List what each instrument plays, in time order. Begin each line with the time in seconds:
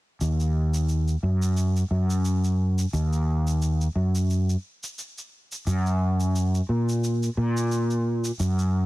0.21 fretless electric bass D#2, cabasa
0.40 cabasa
0.74 cabasa
0.89 cabasa
1.08 cabasa
1.23 fretless electric bass F#2
1.42 cabasa
1.57 cabasa
1.76 cabasa
1.91 fretless electric bass F#2
2.10 cabasa
2.25 cabasa
2.44 cabasa
2.78 cabasa
2.93 fretless electric bass D#2, cabasa
3.13 cabasa
3.47 cabasa
3.62 cabasa
3.81 cabasa
3.96 fretless electric bass F#2
4.15 cabasa
4.30 cabasa
4.49 cabasa
4.83 cabasa
4.99 cabasa
5.18 cabasa
5.52 cabasa
5.67 fretless electric bass F#2, cabasa
5.86 cabasa
6.20 cabasa
6.36 cabasa
6.55 cabasa
6.69 fretless electric bass A#2
6.89 cabasa
7.04 cabasa
7.23 cabasa
7.37 fretless electric bass A#2
7.57 cabasa
7.72 cabasa
7.91 cabasa
8.25 cabasa
8.40 fretless electric bass F#2, cabasa
8.59 cabasa